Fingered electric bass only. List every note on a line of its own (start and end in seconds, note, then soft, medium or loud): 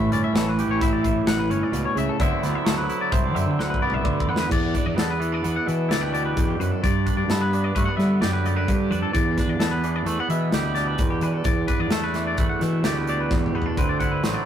0.11 0.21 G1 medium
0.33 0.65 A1 medium
0.67 1.22 A1 medium
1.26 1.47 A1 medium
1.49 1.60 G1 medium
1.72 1.83 C#2 medium
1.95 2.06 C#2 medium
2.20 2.30 D2 loud
2.42 2.53 D2 medium
2.66 2.87 D2 medium
3.12 3.35 C2 medium
3.35 3.45 F#2 medium
3.46 3.57 D3 medium
3.58 3.79 D2 medium
3.82 4.02 C2 medium
4.05 4.26 D2 medium
4.28 4.48 E2 medium
4.51 4.72 E2 medium
4.86 4.96 E2 medium
4.97 5.40 E2 medium
5.44 5.54 E2 medium
5.67 5.88 E3 medium
5.89 6.32 D2 medium
6.37 6.58 E2 medium
6.59 6.70 F#2 medium
6.84 7.04 G2 medium
7.16 7.26 G2 medium
7.27 7.70 G2 medium
7.76 7.86 G2 medium
7.98 8.19 G3 medium
8.21 8.63 F#2 medium
8.68 8.89 G2 medium
8.90 9.01 F2 medium
9.15 9.36 E2 medium
9.47 9.58 E2 medium
9.58 10.02 E2 medium
10.05 10.16 E2 medium
10.28 10.50 E3 medium
10.51 10.95 D2 medium
10.99 11.20 E2 medium
11.21 11.32 E3 medium
11.45 11.66 E2 loud
11.80 11.89 E2 medium
11.90 12.33 E2 medium
12.38 12.48 E2 medium
12.61 12.82 E3 medium
12.83 13.26 D2 medium
13.31 13.52 E2 medium
13.54 13.65 E2 medium
13.77 14.20 D2 medium
14.23 14.33 A1 medium